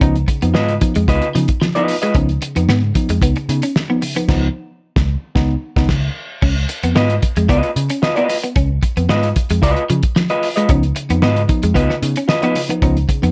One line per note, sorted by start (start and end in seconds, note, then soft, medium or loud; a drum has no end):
0.01 0.23 C#2 loud
0.01 0.16 F3 medium
0.01 0.16 B3 medium
0.01 0.13 C#4 medium
0.01 0.16 D#4 loud
0.01 kick loud
0.01 closed hi-hat medium
0.16 closed hi-hat soft
0.28 0.43 C#3 medium
0.28 muted clean electric guitar stroke medium
0.28 kick medium
0.28 closed hi-hat medium
0.42 0.53 F2 medium
0.42 0.55 F3 medium
0.42 0.52 B3 medium
0.42 0.53 B3 medium
0.42 0.54 D#4 medium
0.42 closed hi-hat soft
0.54 0.77 G#2 medium
0.54 0.66 B3 medium
0.54 0.60 B3 soft
0.54 0.60 D#4 soft
0.54 0.73 F4 medium
0.54 0.73 B4 medium
0.54 0.73 D#5 loud
0.54 snare loud
0.69 0.81 C#3 medium
0.69 closed hi-hat soft
0.81 0.96 F3 medium
0.81 0.96 B3 medium
0.81 0.96 D#4 medium
0.81 muted clean electric guitar stroke soft
0.81 kick loud
0.81 closed hi-hat medium
0.95 1.06 F2 medium
0.95 1.06 G#3 medium
0.95 closed hi-hat medium
1.08 1.20 C#2 loud
1.08 1.23 B3 medium
1.08 1.23 D#4 medium
1.08 1.27 F4 medium
1.08 1.27 B4 loud
1.08 1.27 D#5 loud
1.08 kick medium
1.08 closed hi-hat medium
1.22 1.35 C#3 medium
1.22 closed hi-hat soft
1.35 1.47 C#3 medium
1.35 1.46 F3 medium
1.35 1.49 B3 medium
1.35 1.49 D#4 medium
1.35 closed hi-hat medium
1.48 kick medium
1.48 closed hi-hat medium
1.61 1.76 C#3 medium
1.61 1.73 F3 medium
1.61 snare loud
1.75 1.89 F3 medium
1.75 1.88 B3 medium
1.75 1.88 D#4 medium
1.75 1.96 F4 medium
1.75 1.95 B4 medium
1.75 1.95 D#5 medium
1.75 muted clean electric guitar stroke soft
1.75 closed hi-hat soft
1.88 1.94 B3 soft
1.88 1.94 D#4 soft
1.88 open hi-hat medium
2.02 2.13 G#3 medium
2.02 2.15 F4 medium
2.02 2.15 B4 medium
2.02 2.15 D#5 medium
2.02 closed hi-hat soft
2.15 2.37 C#2 loud
2.15 2.29 F3 medium
2.15 2.30 B3 medium
2.15 2.27 C#4 medium
2.15 2.30 D#4 loud
2.15 kick loud
2.15 closed hi-hat medium
2.29 closed hi-hat soft
2.41 2.56 C#3 medium
2.41 muted clean electric guitar stroke soft
2.41 closed hi-hat medium
2.56 2.67 F2 medium
2.56 2.69 F3 medium
2.56 2.67 B3 medium
2.56 2.66 B3 medium
2.56 2.67 D#4 medium
2.56 closed hi-hat soft
2.68 2.91 G#2 medium
2.68 2.74 B3 soft
2.68 2.80 B3 medium
2.68 2.74 D#4 soft
2.68 snare loud
2.83 2.95 C#3 medium
2.95 3.09 F3 medium
2.95 3.10 B3 medium
2.95 3.10 D#4 medium
2.95 muted clean electric guitar stroke soft
2.95 kick loud
2.95 closed hi-hat medium
3.09 3.20 F2 medium
3.09 3.20 G#3 medium
3.09 closed hi-hat medium
3.22 3.34 C#2 medium
3.22 3.36 B3 medium
3.22 3.34 B3 medium
3.22 3.36 D#4 medium
3.22 kick medium
3.22 closed hi-hat medium
3.36 3.49 C#3 medium
3.36 muted clean electric guitar stroke soft
3.36 closed hi-hat soft
3.49 3.60 C#3 medium
3.49 3.63 B3 medium
3.49 3.63 D#4 medium
3.49 closed hi-hat medium
3.62 3.73 C#4 medium
3.62 closed hi-hat medium
3.76 snare loud
3.90 4.02 F3 medium
3.90 4.00 B3 medium
3.90 4.02 B3 medium
3.90 4.03 D#4 medium
4.02 4.17 C#3 medium
4.02 muted clean electric guitar stroke soft
4.02 open hi-hat medium
4.16 4.27 F3 medium
4.16 4.27 B3 medium
4.16 4.26 B3 medium
4.16 4.28 D#4 medium
4.16 closed hi-hat medium
4.28 4.47 C#2 loud
4.28 4.47 F3 medium
4.28 4.47 B3 loud
4.28 4.47 D#4 medium
4.28 kick loud
4.28 snare loud
4.28 crash medium
4.96 5.14 C#2 medium
4.96 kick loud
4.96 snare loud
5.35 5.54 C#2 medium
5.35 5.54 B3 loud
5.35 5.54 D#4 loud
5.35 kick loud
5.35 snare loud
5.76 5.87 C#2 loud
5.76 5.87 B3 loud
5.76 5.87 D#4 loud
5.76 kick loud
5.76 snare loud
5.89 6.08 C#2 loud
5.89 kick loud
5.89 snare loud
5.89 crash medium
6.42 6.64 C#2 loud
6.42 6.54 C#4 medium
6.42 kick loud
6.42 crash loud
6.69 muted clean electric guitar stroke soft
6.69 closed hi-hat medium
6.83 6.94 F2 medium
6.83 6.94 B3 medium
6.83 closed hi-hat soft
6.95 7.18 G#2 loud
6.95 7.07 B3 medium
6.95 7.14 F4 medium
6.95 7.15 B4 loud
6.95 7.15 D#5 medium
6.95 snare loud
7.10 closed hi-hat soft
7.22 muted clean electric guitar stroke soft
7.22 kick loud
7.22 closed hi-hat medium
7.36 7.47 F2 medium
7.36 7.47 G#3 medium
7.36 closed hi-hat medium
7.49 7.61 C#2 medium
7.49 7.61 B3 loud
7.49 7.69 F4 medium
7.49 7.70 B4 medium
7.49 7.70 D#5 loud
7.49 kick loud
7.49 closed hi-hat medium
7.63 muted clean electric guitar stroke soft
7.63 closed hi-hat soft
7.76 7.88 C#3 medium
7.76 closed hi-hat medium
7.89 8.00 C#4 medium
7.89 closed hi-hat medium
8.02 8.16 F4 medium
8.02 8.16 B4 medium
8.02 8.15 D#5 medium
8.02 snare loud
8.16 8.27 B3 medium
8.16 8.36 F4 medium
8.16 8.36 B4 medium
8.16 8.36 D#5 medium
8.16 closed hi-hat soft
8.29 muted clean electric guitar stroke soft
8.29 open hi-hat medium
8.44 8.54 B3 medium
8.44 closed hi-hat soft
8.56 8.78 C#2 loud
8.56 8.67 C#4 medium
8.56 kick loud
8.56 closed hi-hat medium
8.83 muted clean electric guitar stroke soft
8.83 kick medium
8.83 closed hi-hat medium
8.97 9.07 F2 medium
8.97 9.07 B3 medium
8.97 closed hi-hat soft
9.09 9.31 G#2 medium
9.09 9.21 B3 medium
9.09 9.28 F4 medium
9.09 9.28 B4 medium
9.09 9.28 D#5 medium
9.09 snare loud
9.23 closed hi-hat soft
9.36 muted clean electric guitar stroke soft
9.36 kick medium
9.36 closed hi-hat medium
9.50 9.61 F2 medium
9.50 9.60 G#3 medium
9.50 closed hi-hat medium
9.62 9.74 C#2 medium
9.62 9.82 F4 medium
9.62 9.83 B4 loud
9.62 9.83 D#5 loud
9.62 kick medium
9.62 closed hi-hat medium
9.76 closed hi-hat soft
9.90 10.01 C#3 loud
9.90 10.01 F3 medium
9.90 closed hi-hat medium
10.03 kick loud
10.03 closed hi-hat medium
10.16 10.27 F3 medium
10.16 snare loud
10.30 10.48 F4 medium
10.30 10.48 B4 medium
10.30 10.47 D#5 medium
10.30 muted clean electric guitar stroke soft
10.30 closed hi-hat soft
10.43 open hi-hat medium
10.56 10.67 G#3 medium
10.56 10.70 F4 medium
10.56 10.70 B4 medium
10.56 10.70 D#5 medium
10.56 closed hi-hat medium
10.68 10.91 C#2 loud
10.68 10.83 F3 medium
10.68 10.83 B3 medium
10.68 10.81 C#4 medium
10.68 10.83 D#4 loud
10.68 kick loud
10.68 closed hi-hat medium
10.83 closed hi-hat soft
10.95 11.10 C#3 medium
10.95 muted clean electric guitar stroke soft
10.95 closed hi-hat medium
11.09 11.20 F2 medium
11.09 11.22 F3 medium
11.09 11.21 B3 medium
11.09 11.20 B3 medium
11.09 11.21 D#4 medium
11.09 closed hi-hat soft
11.22 11.45 G#2 medium
11.22 11.28 B3 soft
11.22 11.34 B3 medium
11.22 11.28 D#4 soft
11.22 11.41 F4 medium
11.22 11.41 B4 medium
11.22 11.41 D#5 loud
11.22 snare loud
11.36 11.49 C#3 medium
11.36 closed hi-hat soft
11.49 11.63 F3 medium
11.49 11.63 B3 medium
11.49 11.63 D#4 medium
11.49 muted clean electric guitar stroke soft
11.49 kick loud
11.49 closed hi-hat medium
11.63 11.74 F2 loud
11.63 11.73 G#3 medium
11.63 closed hi-hat medium
11.74 11.87 C#2 medium
11.74 11.90 B3 medium
11.74 11.87 B3 loud
11.74 11.90 D#4 medium
11.74 11.94 F4 medium
11.74 11.94 B4 medium
11.74 11.94 D#5 medium
11.74 kick medium
11.74 closed hi-hat medium
11.90 12.02 C#3 medium
11.90 muted clean electric guitar stroke soft
11.90 snare soft
12.02 12.14 C#3 loud
12.02 12.16 B3 medium
12.02 12.17 D#4 medium
12.02 closed hi-hat medium
12.16 12.27 C#4 medium
12.16 closed hi-hat medium
12.28 12.42 F4 medium
12.28 12.42 B4 medium
12.28 12.41 D#5 medium
12.28 snare loud
12.42 12.55 F3 medium
12.42 12.56 B3 medium
12.42 12.53 B3 medium
12.42 12.56 D#4 medium
12.42 12.61 F4 medium
12.42 12.61 B4 medium
12.42 12.60 D#5 medium
12.42 closed hi-hat soft
12.55 12.70 C#3 medium
12.55 muted clean electric guitar stroke soft
12.55 open hi-hat medium
12.69 12.80 F3 medium
12.69 12.81 B3 medium
12.69 12.80 B3 medium
12.69 12.81 D#4 medium
12.69 closed hi-hat soft
12.82 13.04 C#2 loud
12.82 12.96 F3 medium
12.82 12.96 B3 medium
12.82 12.94 C#4 medium
12.82 12.97 D#4 loud
12.82 kick loud
12.82 closed hi-hat medium
12.97 closed hi-hat soft
13.09 13.23 C#3 medium
13.09 muted clean electric guitar stroke soft
13.09 kick medium
13.09 closed hi-hat medium
13.22 13.32 F2 loud
13.22 13.32 F3 medium
13.22 13.32 B3 medium
13.22 13.32 D#4 medium
13.22 closed hi-hat soft